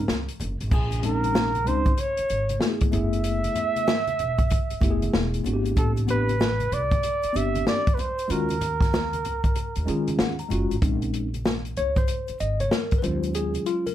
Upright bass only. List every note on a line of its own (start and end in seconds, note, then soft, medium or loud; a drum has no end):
0.09 0.26 C#2 loud
0.41 0.57 F#1 medium
0.61 0.70 G#1 medium
0.72 1.67 A#1 loud
1.67 1.93 C#2 medium
2.19 muted upright bass stroke soft
2.30 2.56 G#1 medium
2.93 3.45 F#1 loud
4.20 4.46 E1 medium
4.71 muted upright bass stroke soft
4.82 5.08 F#1 medium
5.14 5.40 E1 loud
5.46 5.72 G#1 medium
5.77 6.68 A1 loud
6.72 6.98 C2 medium
7.24 muted upright bass stroke medium
7.35 7.61 G1 medium
8.30 9.25 D#2 loud
9.25 9.51 C#2 medium
9.77 9.86 D#2 medium
9.88 10.14 D#3 medium
10.20 10.36 D#2 medium
10.51 10.68 F#1 loud
10.71 10.80 G#1 medium
10.82 11.73 A#1 loud
11.78 12.04 C#2 medium
12.29 muted upright bass stroke soft
12.41 12.67 G#1 medium
13.04 13.56 D#2 loud